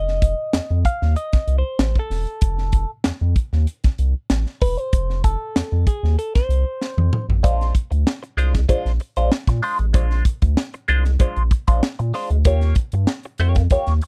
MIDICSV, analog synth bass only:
0, 0, Header, 1, 2, 480
1, 0, Start_track
1, 0, Tempo, 626959
1, 1854, Time_signature, 4, 2, 24, 8
1, 10774, End_track
2, 0, Start_track
2, 0, Title_t, "Analog synth bass"
2, 0, Program_c, 0, 38
2, 0, Note_on_c, 0, 29, 114
2, 264, Note_off_c, 0, 29, 0
2, 410, Note_on_c, 0, 41, 51
2, 462, Note_off_c, 0, 41, 0
2, 540, Note_on_c, 0, 41, 81
2, 642, Note_off_c, 0, 41, 0
2, 783, Note_on_c, 0, 39, 99
2, 884, Note_off_c, 0, 39, 0
2, 1020, Note_on_c, 0, 36, 47
2, 1065, Note_off_c, 0, 36, 0
2, 1129, Note_on_c, 0, 36, 92
2, 1246, Note_off_c, 0, 36, 0
2, 1370, Note_on_c, 0, 33, 94
2, 1486, Note_off_c, 0, 33, 0
2, 1611, Note_on_c, 0, 28, 102
2, 1727, Note_off_c, 0, 28, 0
2, 1851, Note_on_c, 0, 29, 104
2, 2183, Note_off_c, 0, 29, 0
2, 2336, Note_on_c, 0, 41, 50
2, 2386, Note_off_c, 0, 41, 0
2, 2460, Note_on_c, 0, 41, 91
2, 2562, Note_off_c, 0, 41, 0
2, 2701, Note_on_c, 0, 39, 86
2, 2803, Note_off_c, 0, 39, 0
2, 2943, Note_on_c, 0, 36, 53
2, 2988, Note_off_c, 0, 36, 0
2, 3054, Note_on_c, 0, 36, 91
2, 3169, Note_off_c, 0, 36, 0
2, 3293, Note_on_c, 0, 33, 90
2, 3408, Note_off_c, 0, 33, 0
2, 3535, Note_on_c, 0, 28, 104
2, 3649, Note_off_c, 0, 28, 0
2, 3774, Note_on_c, 0, 29, 111
2, 4105, Note_off_c, 0, 29, 0
2, 4254, Note_on_c, 0, 41, 50
2, 4305, Note_off_c, 0, 41, 0
2, 4381, Note_on_c, 0, 41, 92
2, 4483, Note_off_c, 0, 41, 0
2, 4619, Note_on_c, 0, 39, 86
2, 4722, Note_off_c, 0, 39, 0
2, 4867, Note_on_c, 0, 36, 49
2, 4911, Note_off_c, 0, 36, 0
2, 4969, Note_on_c, 0, 36, 97
2, 5086, Note_off_c, 0, 36, 0
2, 5341, Note_on_c, 0, 41, 97
2, 5443, Note_off_c, 0, 41, 0
2, 5579, Note_on_c, 0, 33, 105
2, 5682, Note_off_c, 0, 33, 0
2, 5695, Note_on_c, 0, 34, 106
2, 5911, Note_off_c, 0, 34, 0
2, 6059, Note_on_c, 0, 38, 89
2, 6162, Note_off_c, 0, 38, 0
2, 6409, Note_on_c, 0, 36, 83
2, 6627, Note_off_c, 0, 36, 0
2, 6653, Note_on_c, 0, 34, 46
2, 6704, Note_off_c, 0, 34, 0
2, 6780, Note_on_c, 0, 34, 99
2, 6882, Note_off_c, 0, 34, 0
2, 7020, Note_on_c, 0, 34, 86
2, 7122, Note_off_c, 0, 34, 0
2, 7255, Note_on_c, 0, 46, 92
2, 7359, Note_off_c, 0, 46, 0
2, 7498, Note_on_c, 0, 33, 98
2, 7601, Note_off_c, 0, 33, 0
2, 7612, Note_on_c, 0, 34, 110
2, 7828, Note_off_c, 0, 34, 0
2, 7979, Note_on_c, 0, 38, 87
2, 8081, Note_off_c, 0, 38, 0
2, 8336, Note_on_c, 0, 36, 100
2, 8550, Note_off_c, 0, 36, 0
2, 8571, Note_on_c, 0, 34, 49
2, 8622, Note_off_c, 0, 34, 0
2, 8704, Note_on_c, 0, 34, 89
2, 8804, Note_off_c, 0, 34, 0
2, 8942, Note_on_c, 0, 34, 88
2, 9042, Note_off_c, 0, 34, 0
2, 9185, Note_on_c, 0, 46, 92
2, 9284, Note_off_c, 0, 46, 0
2, 9420, Note_on_c, 0, 38, 96
2, 9521, Note_off_c, 0, 38, 0
2, 9535, Note_on_c, 0, 39, 109
2, 9750, Note_off_c, 0, 39, 0
2, 9901, Note_on_c, 0, 43, 90
2, 10002, Note_off_c, 0, 43, 0
2, 10255, Note_on_c, 0, 41, 82
2, 10469, Note_off_c, 0, 41, 0
2, 10493, Note_on_c, 0, 39, 52
2, 10544, Note_off_c, 0, 39, 0
2, 10622, Note_on_c, 0, 39, 89
2, 10722, Note_off_c, 0, 39, 0
2, 10774, End_track
0, 0, End_of_file